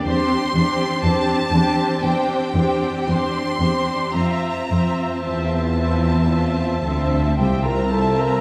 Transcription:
<<
  \new Staff \with { instrumentName = "Flute section" } { \time 4/4 \key f \major \tempo 4 = 56 r1 | r2. g''16 bes''16 a''16 bes''16 | }
  \new Staff \with { instrumentName = "Violin section" } { \time 4/4 \key f \major c'''4 a''4 g''4 c'''4 | bes''4 a''2 g''16 bes''16 a''16 bes''16 | }
  \new Staff \with { instrumentName = "Clarinet" } { \time 4/4 \key f \major r1 | r2. g'16 bes'16 a'16 bes'16 | }
  \new Staff \with { instrumentName = "Violin section" } { \time 4/4 \key f \major <g' c''>8 <g' c''>8 <g' c''>8 <g' c''>8 <g' c''>8 <g' c''>8 <g' c''>8 <g' c''>8 | <f' c''>8 <f' c''>8 <f' c''>8 <f' c''>8 <f' c''>8 <f' c''>8 <f' c''>8 <f' c''>8 | }
  \new Staff \with { instrumentName = "Viola section" } { \time 4/4 \key f \major <c' d'>8 <c' d'>8 <c' d'>8 <c' d'>8 <c' d'>8 <c' d'>8 <c' d'>8 <c' d'>8 | <c' e''>8 <c' e''>8 <c' e''>8 <c' e''>8 <c' e''>8 <c' e''>8 <c' e''>8 <c' e''>8 | }
  \new Staff \with { instrumentName = "Cello section" } { \clef bass \time 4/4 \key f \major e,8 e,8 e,8 e,8 e,8 e,8 e,8 e,8 | f,8 f,8 e,4. d,8 c,4 | }
>>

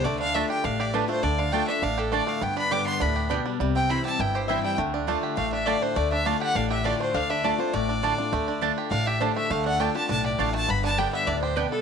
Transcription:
<<
  \new Staff \with { instrumentName = "Fiddle" } { \time 4/4 \key d \dorian \tempo 4 = 203 d''8 f''8 e''8 g''8 f''8 d''8 b'8 c''8 | d''8 f''8 g''8 e''8 f''8 a'8 d''8 f''8 | g''8 b''8 d'''8 c'''8 b''4 r4 | r8 g''8 b''8 a''8 g''8 c''8 e''8 g''8 |
r2 f''8 e''8 d''8 c''8 | d''8 e''8 f''8 fis''8 f''8 e''8 d''8 c''8 | f''8 e''8 d''8 c''8 d''2~ | d''4 r4 f''8 e''8 c''8 e''8 |
f''8 fis''8 g''8 a''8 a''8 d''8 f''8 a''8 | b''8 a''8 g''8 e''8 d''8 c''8 b'8 a'8 | }
  \new Staff \with { instrumentName = "Resonator guitar played with a steel bar" } { \time 4/4 \key d \dorian r1 | r1 | r1 | r2 g''8 c''8 e''8 g''8 |
r2 f''8 e''8 d''8 c''8 | d''8 e''8 f''8 fis''8 f''8 e''8 d''8 c''8 | f''8 e''8 d''8 c''8 d''2~ | d''4 r4 f''8 e''8 c''8 e''8 |
f''8 fis''8 g''8 a''8 a''8 r8 f''8 a''8 | b''8 a''8 g''8 e''8 d''8 c''8 b'8 a'8 | }
  \new Staff \with { instrumentName = "Mandolin" } { \time 4/4 \key d \dorian r4 <a f' d'' a''>8 r4. <a f' d'' a''>8 r8 | r4 <a f' d'' a''>8 r4. <a f' d'' a''>8 r8 | r4 <b g' d'' g''>8 r4. <b g' d'' g''>8 r8 | r4 <c' e' c'' g''>8 r4. <c' e' c'' g''>8 r8 |
r4 <a f' d'' a''>8 r4. <a f' d'' a''>8 r8 | r4 <a f' d'' a''>8 r4. <a f' d'' a''>8 r8 | r4 <a f' d'' a''>8 r4. <a f' d'' a''>8 r8 | r4 <a f' d'' a''>8 r4. <a f' d'' a''>8 r8 |
r4 <a f' d'' a''>8 r4. <a f' d'' a''>8 r8 | r4 <b g' d'' g''>8 r4. <b g' d'' g''>8 r8 | }
  \new Staff \with { instrumentName = "Five-string banjo" } { \time 4/4 \key d \dorian a8 d'8 d'8 g'8 d'8 g'8 d'8 a8 | d'8 d'8 a8 d'8 d'8 g'8 d'8 a8 | b8 d'8 g8 b8 d'8 g'8 d'8 g8 | g8 c'8 e'8 g'8 e'8 g'8 e'8 g8 |
a8 d'8 a8 g'8 a8 d'8 g'8 d'8 | a8 d'8 d'8 g'8 d'8 g'8 d'8 a8 | d'8 d'8 a8 d'8 a8 d'8 d'8 d'8 | a8 d'8 d'8 g'8 d'8 g'8 d'8 a8 |
a8 d'8 d'8 g'8 d'8 g'8 d'8 a8 | b8 d'8 g8 b8 d'8 g'8 d'8 g8 | }
  \new Staff \with { instrumentName = "Steel-string acoustic guitar" } { \time 4/4 \key d \dorian << { r4 <d a d' f'>4 r4 <d a d' f'>8 <d' f'>8 | r4 <d a d' f'>4 r4 <d a d' f'>4 | r4 <d g b g'>4 r2 | r4 <e g c' e'>4 r4 <e g c' e'>4 |
r4 <d a d' f'>4 r4 <d a d' f'>4 | r4 <d a d' f'>4 r4 <d a d' f'>4 | r4 <d a d' f'>8 <d' f'>8 r4 <d a d' f'>8 <d' f'>8 | r4 <d a d' f'>4 r4 <d a d' f'>4 |
r4 <d a d' f'>8 <d' f'>8 r4 <d a d' f'>4 | r4 <d g b g'>4 r2 | } \\ { d2 a,2 | d2 a,2 | g,2 a,4 b,4 | c2 g,2 |
d2 a,2 | d2 a,2 | d2 a,2 | d2 a,2 |
d2 a,2 | g,2 a,4 b,4 | } >> }
  \new Staff \with { instrumentName = "Upright bass" } { \clef bass \time 4/4 \key d \dorian d,2 a,,2 | d,2 a,,2 | g,,2 d,2 | c,2 g,,2 |
d,2 a,,2 | d,2 a,,2 | d,2 a,,2 | d,2 a,,2 |
d,2 b,,4 a,,4 | g,,2 d,2 | }
>>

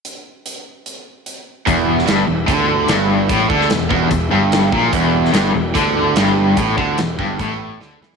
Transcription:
<<
  \new Staff \with { instrumentName = "Tonewheel organ" } { \time 4/4 \key e \minor \tempo 4 = 147 r1 | <b e' g' e''>1~ | <b e' g' e''>1 | <b e' g'>1~ |
<b e' g'>1 | }
  \new Staff \with { instrumentName = "Overdriven electric guitar" } { \clef bass \time 4/4 \key e \minor r1 | e,4 g,8 e,8 d4 g,4 | a,8 d8 e,8 e,8 e,8 g,4 ais,8 | e,4 g,8 e,8 d4 g,4 |
a,8 d8 e,8 g,8 a,4 d8 e8 | }
  \new Staff \with { instrumentName = "Overdriven electric guitar" } { \clef bass \time 4/4 \key e \minor r1 | e,4 g,8 e,8 d4 g,4 | a,8 d8 e,8 e,8 e,8 g,4 ais,8 | e,4 g,8 e,8 d4 g,4 |
a,8 d8 e,8 g,8 a,4 d8 e8 | }
  \new Staff \with { instrumentName = "Fingered electric bass" } { \clef bass \time 4/4 \key e \minor r1 | e,,4 g,,8 e,,8 d,4 g,,4 | a,,8 d,8 e,,8 e,,8 e,,8 g,,4 ais,,8 | e,,4 g,,8 e,,8 d,4 g,,4 |
a,,8 d,8 e,,8 g,,8 a,,4 d,8 e,8 | }
  \new DrumStaff \with { instrumentName = "Drums" } \drummode { \time 4/4 hh4 hh4 hh4 hh4 | <hh bd>8. sn16 <hh sn>4 <hh bd>4 <hh sn>4 | <hh bd>8 bd16 sn16 <hh sn>8 bd8 <hh bd>4 <hh sn>8 bd8 | <hh bd>8. sn16 <hh sn>4 <hh bd>4 <hh sn>4 |
<hh bd>8 bd8 <hh sn>8 bd8 <hh bd>4 sn8 sn16 sn16 | }
>>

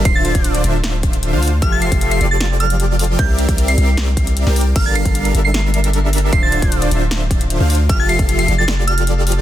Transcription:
<<
  \new Staff \with { instrumentName = "Synth bell" } { \time 4/4 \key d \minor \tempo 4 = 153 c''''16 a'''8. r2. | f'''16 a'''16 c''''8. c''''8 a'''8. f'''8 r4 | g'''8 r8. c''''8. r2 | f'''16 a'''16 c''''8. r8 c''''8 r4. r16 |
c''''16 a'''8. r2. | f'''16 a'''16 c''''8. c''''8 a'''8. f'''8 r4 | }
  \new Staff \with { instrumentName = "Supersaw synth" } { \time 4/4 \key d \minor <d d' f' c'' e''>8. <d d' f' c'' d''>8. <d d' f' c'' e''>4.~ <d d' f' c'' e''>16 <d d' f' c'' f''>8 r16 | <f f' g' a' e''>8. <f f' g' a' e''>8. <f f' g' a' d''>2~ <f f' g' a' d''>8 | <c' g' bes' d'' e''>8. <c' g' bes' d'' e''>8. <c' g' bes' d'' e''>4.~ <c' g' bes' d'' e''>16 <c' g' bes' d'' g''>8 r16 | <g d' a' bes' f''>8. <g d' a' bes' f''>8. <g d' a' bes' e''>2~ <g d' a' bes' e''>8 |
<d d' f' c'' e''>8. <d d' f' c'' d''>8. <d d' f' c'' e''>4.~ <d d' f' c'' e''>16 <d d' f' c'' f''>8 r16 | <f f' g' a' e''>8. <f f' g' a' e''>8. <f f' g' a' d''>2~ <f f' g' a' d''>8 | }
  \new Staff \with { instrumentName = "808-style bass" } { \clef bass \time 4/4 \key d \minor r8. d,,8. d,,4.~ d,,16 d,8. | f,,8. f,,8. f,,2~ f,,8 | c,8. c,8. c,4.~ c,16 c,8. | r8. g,,8. g,,2~ g,,8 |
r8. d,,8. d,,4.~ d,,16 d,8. | f,,8. f,,8. f,,2~ f,,8 | }
  \new DrumStaff \with { instrumentName = "Drums" } \drummode { \time 4/4 <hh bd>8 hh16 <hh bd>16 hh16 hh16 hh8 <hh sn>8 <hh bd>16 hh16 hh8 hho32 hh16. | <hh bd>8 hh16 <hh bd>16 hh16 hh16 hh8 <hh sn>8 hh16 hh16 hh8 hho32 hh16. | <hh bd>8 hh16 <hh bd>16 hh16 hh16 hh8 <hh sn>8 <hh bd>16 hh16 hh16 sn16 hho32 hh16. | <cymc hh bd>8 hh16 <hh bd>16 hh16 hh16 hh8 <hh sn>8 hh16 hh16 hh8 hho32 hh16. |
<hh bd>8 hh16 <hh bd>16 hh16 hh16 hh8 <hh sn>8 <hh bd>16 hh16 hh8 hho32 hh16. | <hh bd>8 hh16 <hh bd>16 hh16 hh16 hh8 <hh sn>8 hh16 hh16 hh8 hho32 hh16. | }
>>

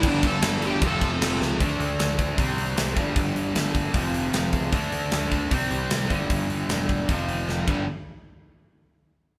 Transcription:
<<
  \new Staff \with { instrumentName = "Lead electric guitar" } { \time 4/4 \key d \mixolydian \tempo 4 = 153 d'8 a'4 g'8 a'4. r8 | r1 | r1 | r1 |
r1 | r1 | }
  \new Staff \with { instrumentName = "Overdriven electric guitar" } { \clef bass \time 4/4 \key d \mixolydian <g, d g b d'>8 <g, d g b d'>8 <g, d g b d'>8 <g, d g b d'>8 <f, c f a c'>8 <f, c f a c'>8 <f, c f a c'>8 <f, c f a c'>8 | r1 | r1 | r1 |
r1 | r1 | }
  \new Staff \with { instrumentName = "Overdriven electric guitar" } { \clef bass \time 4/4 \key d \mixolydian <g, d g>4. <g, d g>8 <f, c f>2 | <d a d'>2 <c g c'>4. <g, d g>8~ | <g, d g>2 <f, c f>2 | <d a d'>2 <c g c'>4. <g, d g>8~ |
<g, d g>2 <f, c f>4. <g, d g>8 | r1 | }
  \new Staff \with { instrumentName = "Overdriven electric guitar" } { \clef bass \time 4/4 \key d \mixolydian <g, d g>2 <f, c f>2 | <d a d'>4. <d a d'>8 <c g c'>4. <g, d g>8~ | <g, d g>4 <g, d g>4 <f, c f>4. <f, c f>8 | <d a d'>4. <d a d'>8 <c g c'>4. <g, d g>8~ |
<g, d g>4 <g, d g>4 <f, c f>4. <g, d g>8 | r1 | }
  \new Staff \with { instrumentName = "Picked electric bass" } { \clef bass \time 4/4 \key d \mixolydian g,,8 g,,8 g,,4 f,,8 f,,8 f,,8 cis,8 | d,8 d,8 d,4 c,8 c,8 c,8 g,,8 | g,,8 g,,8 g,,4 f,,4 f,,8 cis,8 | d,8 d,8 d,4 c,8 c,8 c,8 g,,8 |
g,,8 g,,8 e,,4 f,,4 f,,8 g,,8 | r1 | }
  \new DrumStaff \with { instrumentName = "Drums" } \drummode { \time 4/4 <cymc bd>8 <cymc bd>8 <cymc sn>8 cymc8 <cymc bd>8 <cymc bd>8 <cymc sn>8 sn8 | <hho bd>8 hho8 <hho sn>8 <hho bd>8 <hho bd>8 hho8 <hho sn>8 <hho bd>8 | <hho bd>8 hho8 <hho sn>8 <hho bd>8 <hho bd>8 hho8 <hho sn>8 <hho bd>8 | <hho bd>8 hho8 <hho sn>8 <hho bd>8 <hho bd>8 hho8 <hho sn>8 <hho bd>8 |
<hho bd>8 hho8 <hho sn>8 <hho bd>8 <hho bd>8 hho8 sn8 <cymc bd>8 | r4 r4 r4 r4 | }
>>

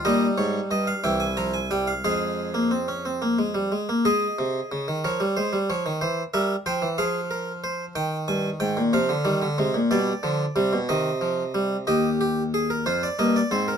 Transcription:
<<
  \new Staff \with { instrumentName = "Harpsichord" } { \time 6/8 \key f \minor \tempo 4. = 61 << { ees''8 des''8 ees''16 f''16 g''16 aes''16 bes''16 aes''16 g''16 f''16 | f''2~ f''8 r8 | ees''4. des''4. | r8 e''8 g''8 f''4. |
g''8 aes''8 g''8 f''4. | d''4. ees''4. | \key ees \major ees''8 g'8 aes'16 bes'16 c''16 d''16 ees''16 d''16 c''16 bes'16 | } \\ { ees'4. e'4. | aes'2~ aes'8 r8 | aes'4. bes'8 c''8 des''8 | c''8 bes'8 c''8 aes'8 bes'8 c''8 |
r2. | r2. | g'4. f'8 bes8 c'8 | } >> }
  \new Staff \with { instrumentName = "Harpsichord" } { \clef bass \time 6/8 \key f \minor << { g4. e8 f8 g8 | aes8. bes16 c'16 des'16 c'16 bes16 aes16 g16 aes16 bes16 | aes8 c8 des16 ees16 f16 g16 aes16 g16 f16 ees16 | e8 g8 f16 e16 f4. |
ees4. f8 g8 aes8 | g8 f8 g8 ees8 f8 g8 | \key ees \major r2. | } \\ { bes,8 aes,8 g,8 c,4. | f,2~ f,8 r8 | r2. | r2. |
r8 g,8 aes,16 bes,16 c16 d16 ees16 d16 c16 bes,16 | b,8 d8 c16 b,16 c4. | ees,4. f,8 g,8 aes,8 | } >> }
>>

